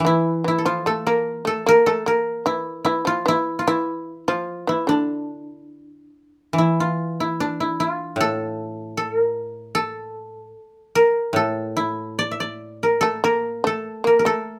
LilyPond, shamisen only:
\new Staff \with { instrumentName = "Shamisen" } { \clef bass \time 2/4 \tempo 4 = 74 e8 e16 f16 a16 bes8 a16 | bes16 a16 bes8 e8 e16 f16 | e8 e8. f8 e16 | d4. r8 |
r2 | r2 | r2 | r2 |
a16 bes8 a8 bes16 a8 | }